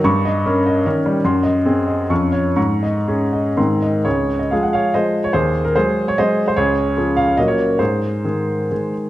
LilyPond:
<<
  \new Staff \with { instrumentName = "Grand piano" } { \time 3/4 \key des \major \tempo 4 = 140 des'''8 ees''8 bes'8 ees''8 bes'8 g8 | c'''8 ees''8 aes'8 ees''8 des'''8 des''8 | des'''8 ees''8 aes'8 ees''8 c'''8 ees''8 | <aes' des''>8. ees''16 f''16 ges''16 <des'' f''>8 <c'' ees''>8. des''16 |
<aes' c''>8. bes'16 <aes' c''>8. des''16 <c'' ees''>8. c''16 | <aes' des''>4. f''16 des''16 ees''16 <bes' des''>8. | <aes' c''>2~ <aes' c''>8 r8 | }
  \new Staff \with { instrumentName = "Grand piano" } { \clef bass \time 3/4 \key des \major g,4 des'4 <ees des'>4 | ges,4 c'4 <f, f des'>4 | aes,4 des'4 <aes, ees c'>4 | des,4 <f aes aes'>4 <f aes aes'>4 |
ees,4 <ges aes>4 <ges aes aes'>4 | des,4 <f des' aes'>4 <bes, ges des' ges'>4 | aes,4 <ees aes aes'>4 <ees aes aes'>4 | }
>>